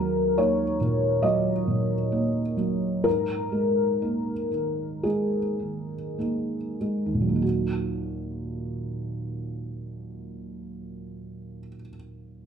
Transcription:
Already playing: D#2 F#3 A#4
0.38 A#3 D#4 C#5
0.81 A#2
1.22 F#3 D#5
1.67 A#2
2.12 A#3 D#4
2.57 F#3
3.04 G#2 A#4
3.52 G#3
4.02 A#3 D#4
4.52 D#3
5.03 G#3 G#4
5.60 D#3
6.19 A#3 D#4
6.81 G#3
7.06 D#2
7.14 A#2
7.21 F#3
7.29 A#3
7.36 D#4
7.42 F#4

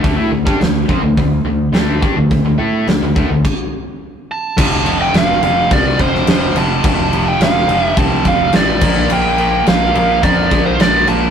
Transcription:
0.02 D2 D3 A3, kick, open hi-hat
0.16 A2 A3 E4
0.31 D2 D3 A3
0.45 G2 G3 D4, kick
0.60 D2 D3 A3, snare, open hi-hat
0.88 F2 F3 C4, kick
1.02 D2 D3 A3
1.17 D2 D3 A3, kick, open hi-hat
1.44 D2 D3 A3
1.72 D2 D3 A3 D4, snare, open hi-hat
2.02 G2 G3 D4, kick
2.16 D2 D3 A3
2.31 D2 D3 A3, kick, open hi-hat
2.45 D2 D3 A3
2.58 A2 A3 E4 A4
2.87 D2 D3 A3, snare, open hi-hat
3.01 D2 D3 A3
3.15 D2 D3 A3, kick
3.29 D2 D3 A3
3.45 kick, crash
4.31 A5
4.57 F1 F2 C3 F3, kick, crash
4.85 F2 C3 F3, crash
5.02 G5
5.14 F1 F2 C3 F3 F5, snare, crash
5.43 F1 F2 C3 F3, crash
5.71 C2 F2 C3 F3 D5, kick, crash
5.99 F1 F2 C3 F3 C5, kick, crash
6.15 snare
6.27 F1 F2 C3 F3, snare, crash
6.54 F1 F2 C3 F3 A5, crash
6.84 F1 F2 C3 F3, kick, crash
7.13 F2 C3 F3, crash
7.28 G5
7.40 F1 F2 C3 F3 F5, snare, crash
7.67 F1 F2, crash
7.71 C3 F3
7.83 E5
7.97 C2 F2 C3 F3 A5, kick, crash
8.25 F1 F2 C3 F3 F5, kick, crash
8.53 A1 F2 C3 F3 D5, snare, crash
8.81 A#1 A#2 F3 A#3, kick, crash
9.10 A#1 A#2 F3 A#3 G5, crash
9.38 A#2 F3 A#3, crash
9.66 A#1 A#2 F3 A#3 F5, snare, crash
9.94 A#1 A#2 F3 A#3 F5, crash
10.22 F2 A#2 F3 A#3 D5, kick, crash
10.51 A#1 A#2 F3 A#3, kick, crash
10.66 C5
10.79 A#1 A#2 F3 A#3 D5, snare, crash
11.07 A#1 A#2 F3 A#3 A5, crash

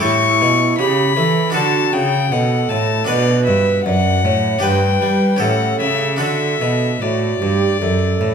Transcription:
0.00 A2 E4 G4 A4 C#6
0.41 B2
0.79 C#3 G4 B5
1.17 E3 A4
1.50 D4 F#4 A4
1.55 D3 F#4 A5
1.93 C#3 G5
2.32 B2 A4 F#5
2.69 A2 A5
3.04 D4 F#4 B4 D5
3.09 B2 B4
3.46 G2 E5
3.84 F#2 D5 F#5
4.24 A2 C#5
4.59 D4 G4 B4 G5
4.63 G2
5.02 G3
5.36 C#4 G4 A4 F#5
5.41 A2 A4
5.80 C#3 E5
6.16 D4 F#4 A4
6.21 D3 E5
6.61 B2
7.01 A2 F#4 D5
7.40 G2 G4
7.81 F#2 A4
8.21 A2

